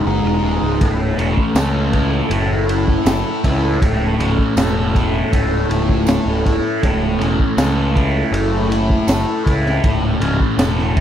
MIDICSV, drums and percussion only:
0, 0, Header, 1, 2, 480
1, 0, Start_track
1, 0, Tempo, 751880
1, 515, Time_signature, 4, 2, 24, 8
1, 7025, End_track
2, 0, Start_track
2, 0, Title_t, "Drums"
2, 518, Note_on_c, 9, 51, 86
2, 519, Note_on_c, 9, 36, 104
2, 582, Note_off_c, 9, 51, 0
2, 583, Note_off_c, 9, 36, 0
2, 758, Note_on_c, 9, 51, 60
2, 822, Note_off_c, 9, 51, 0
2, 878, Note_on_c, 9, 36, 72
2, 942, Note_off_c, 9, 36, 0
2, 993, Note_on_c, 9, 54, 86
2, 995, Note_on_c, 9, 38, 108
2, 995, Note_on_c, 9, 51, 87
2, 1057, Note_off_c, 9, 54, 0
2, 1059, Note_off_c, 9, 38, 0
2, 1059, Note_off_c, 9, 51, 0
2, 1233, Note_on_c, 9, 51, 64
2, 1237, Note_on_c, 9, 36, 86
2, 1297, Note_off_c, 9, 51, 0
2, 1301, Note_off_c, 9, 36, 0
2, 1474, Note_on_c, 9, 51, 88
2, 1538, Note_off_c, 9, 51, 0
2, 1718, Note_on_c, 9, 51, 66
2, 1782, Note_off_c, 9, 51, 0
2, 1838, Note_on_c, 9, 36, 76
2, 1902, Note_off_c, 9, 36, 0
2, 1955, Note_on_c, 9, 54, 99
2, 1958, Note_on_c, 9, 38, 113
2, 1958, Note_on_c, 9, 51, 92
2, 2019, Note_off_c, 9, 54, 0
2, 2022, Note_off_c, 9, 38, 0
2, 2022, Note_off_c, 9, 51, 0
2, 2197, Note_on_c, 9, 36, 76
2, 2197, Note_on_c, 9, 38, 36
2, 2197, Note_on_c, 9, 51, 74
2, 2261, Note_off_c, 9, 36, 0
2, 2261, Note_off_c, 9, 38, 0
2, 2261, Note_off_c, 9, 51, 0
2, 2439, Note_on_c, 9, 36, 104
2, 2440, Note_on_c, 9, 51, 98
2, 2503, Note_off_c, 9, 36, 0
2, 2504, Note_off_c, 9, 51, 0
2, 2683, Note_on_c, 9, 51, 73
2, 2747, Note_off_c, 9, 51, 0
2, 2800, Note_on_c, 9, 36, 69
2, 2864, Note_off_c, 9, 36, 0
2, 2917, Note_on_c, 9, 54, 94
2, 2923, Note_on_c, 9, 38, 109
2, 2923, Note_on_c, 9, 51, 95
2, 2981, Note_off_c, 9, 54, 0
2, 2987, Note_off_c, 9, 38, 0
2, 2987, Note_off_c, 9, 51, 0
2, 3161, Note_on_c, 9, 36, 79
2, 3166, Note_on_c, 9, 51, 66
2, 3225, Note_off_c, 9, 36, 0
2, 3230, Note_off_c, 9, 51, 0
2, 3401, Note_on_c, 9, 36, 76
2, 3403, Note_on_c, 9, 51, 90
2, 3465, Note_off_c, 9, 36, 0
2, 3467, Note_off_c, 9, 51, 0
2, 3644, Note_on_c, 9, 51, 65
2, 3707, Note_off_c, 9, 51, 0
2, 3762, Note_on_c, 9, 36, 74
2, 3826, Note_off_c, 9, 36, 0
2, 3872, Note_on_c, 9, 54, 91
2, 3885, Note_on_c, 9, 38, 113
2, 3885, Note_on_c, 9, 51, 91
2, 3936, Note_off_c, 9, 54, 0
2, 3949, Note_off_c, 9, 38, 0
2, 3949, Note_off_c, 9, 51, 0
2, 4123, Note_on_c, 9, 36, 69
2, 4126, Note_on_c, 9, 51, 66
2, 4187, Note_off_c, 9, 36, 0
2, 4190, Note_off_c, 9, 51, 0
2, 4362, Note_on_c, 9, 36, 108
2, 4362, Note_on_c, 9, 51, 82
2, 4425, Note_off_c, 9, 36, 0
2, 4426, Note_off_c, 9, 51, 0
2, 4605, Note_on_c, 9, 51, 66
2, 4669, Note_off_c, 9, 51, 0
2, 4722, Note_on_c, 9, 36, 73
2, 4786, Note_off_c, 9, 36, 0
2, 4839, Note_on_c, 9, 54, 89
2, 4841, Note_on_c, 9, 38, 111
2, 4841, Note_on_c, 9, 51, 85
2, 4903, Note_off_c, 9, 54, 0
2, 4905, Note_off_c, 9, 38, 0
2, 4905, Note_off_c, 9, 51, 0
2, 5083, Note_on_c, 9, 36, 80
2, 5085, Note_on_c, 9, 51, 63
2, 5147, Note_off_c, 9, 36, 0
2, 5148, Note_off_c, 9, 51, 0
2, 5323, Note_on_c, 9, 51, 81
2, 5386, Note_off_c, 9, 51, 0
2, 5565, Note_on_c, 9, 51, 62
2, 5629, Note_off_c, 9, 51, 0
2, 5683, Note_on_c, 9, 36, 74
2, 5746, Note_off_c, 9, 36, 0
2, 5796, Note_on_c, 9, 54, 95
2, 5804, Note_on_c, 9, 38, 103
2, 5804, Note_on_c, 9, 51, 92
2, 5859, Note_off_c, 9, 54, 0
2, 5868, Note_off_c, 9, 38, 0
2, 5868, Note_off_c, 9, 51, 0
2, 6043, Note_on_c, 9, 36, 76
2, 6046, Note_on_c, 9, 51, 73
2, 6106, Note_off_c, 9, 36, 0
2, 6110, Note_off_c, 9, 51, 0
2, 6167, Note_on_c, 9, 38, 32
2, 6231, Note_off_c, 9, 38, 0
2, 6280, Note_on_c, 9, 51, 92
2, 6281, Note_on_c, 9, 36, 105
2, 6344, Note_off_c, 9, 51, 0
2, 6345, Note_off_c, 9, 36, 0
2, 6521, Note_on_c, 9, 51, 73
2, 6585, Note_off_c, 9, 51, 0
2, 6641, Note_on_c, 9, 36, 71
2, 6705, Note_off_c, 9, 36, 0
2, 6760, Note_on_c, 9, 54, 93
2, 6762, Note_on_c, 9, 38, 103
2, 6762, Note_on_c, 9, 51, 96
2, 6823, Note_off_c, 9, 54, 0
2, 6826, Note_off_c, 9, 38, 0
2, 6826, Note_off_c, 9, 51, 0
2, 6885, Note_on_c, 9, 38, 32
2, 6949, Note_off_c, 9, 38, 0
2, 7001, Note_on_c, 9, 36, 77
2, 7001, Note_on_c, 9, 51, 68
2, 7025, Note_off_c, 9, 36, 0
2, 7025, Note_off_c, 9, 51, 0
2, 7025, End_track
0, 0, End_of_file